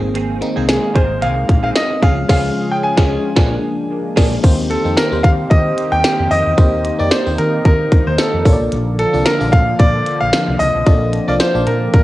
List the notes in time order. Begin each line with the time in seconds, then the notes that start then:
Already playing: G#1 D#3 G#3 A#3 C4 G#4
0.02 muted clean electric guitar stroke
0.14 D#3 A#3 C4 G#4, closed hi-hat
0.41 D#3 A#3 C4 D#4, muted clean electric guitar stroke, closed hi-hat
0.56 C2 D#3 A#3 C4 G#4
0.68 G#4, muted clean electric guitar stroke, snare, closed hi-hat, tambourine
0.83 muted clean electric guitar stroke
0.94 G#1 D#3 A#3 C4 G#4 C5, kick, closed hi-hat
1.10 muted clean electric guitar stroke
1.21 C2 D#3 A#3 C4 G#4 F5, closed hi-hat
1.36 muted clean electric guitar stroke
1.48 A#1, muted clean electric guitar stroke, kick, closed hi-hat
1.63 D#3 A#3 C4 G#4 F5
1.75 D#5, muted clean electric guitar stroke, snare, closed hi-hat, tambourine
1.90 muted clean electric guitar stroke
2.02 C#2 C#3 E3 G#3 C#4 F4 G#4 F5, kick, closed hi-hat
2.08 F3
2.17 muted clean electric guitar stroke
2.29 C#2 G#3 C#4 F4 G#4 F5, kick, snare, crash
2.35 F3
2.71 G5
2.83 G#5
2.97 C#2 F3 G#3 C#4 F4 G#4, kick, snare
3.36 A#1 F3 G#3 A#3 D4 G#4, kick, snare
4.16 A#1 F3 A#3 D4 G#4, kick, snare, crash
4.43 D#2 D#3 A#3 C4 D#4 G4 C5, kick, closed hi-hat, crash
4.70 A4, closed hi-hat
4.85 F2 A#3 C4 D#4 G4 C5
4.97 A#4, snare, closed hi-hat, tambourine
5.11 D#2 A#3 C4 D#4 G4 C5
5.23 D#3 F5, kick, closed hi-hat
5.50 D#3 D#5, kick, closed hi-hat
5.78 closed hi-hat
5.92 D#2 G5
6.04 snare, closed hi-hat, tambourine
6.19 F2
6.31 F2 D#5, open hi-hat
6.46 E2
6.57 D#2 A#3 C4 D#4 G4 C5, kick, closed hi-hat
6.85 closed hi-hat
6.99 F2 A#3 C4 D#4 G4 D5 D#5
7.11 C5, snare, closed hi-hat, tambourine
7.26 D#2 A#3 C4 D#4 G4 C5
7.38 D#3 A#4, closed hi-hat
7.65 D#3 A#4, kick, closed hi-hat
7.92 kick, closed hi-hat
8.07 D#2 C5
8.18 A4, snare, closed hi-hat, tambourine
8.33 F2
8.45 A#1 D3 F3 A#3 D4 F4 A4 C#5, kick, open hi-hat
8.53 D5
8.60 B1
8.72 A#1, closed hi-hat
8.99 A4, closed hi-hat
9.13 C2 A#3 D4 F4 A4 D5
9.25 A#4, snare, closed hi-hat, tambourine
9.40 A#1 A#3 D4 F4 A4 D5
9.52 A#2 F5, kick, closed hi-hat
9.79 A#2 D5, kick, closed hi-hat
10.06 closed hi-hat
10.20 A#1 F5
10.33 snare, closed hi-hat, tambourine
10.48 C2
10.59 C2 C4 D#5, open hi-hat
10.74 B1
10.86 A#1 A#3 D4 F4 A4 D5, kick, closed hi-hat
11.13 closed hi-hat
11.28 C2 A#3 D4 F4 A4 D5 F5
11.40 C5, snare, closed hi-hat, tambourine
11.54 A#1 A#3 D4 F4 D5 A5
11.66 A#2 A#4, closed hi-hat
11.93 A#2 A#4, kick, closed hi-hat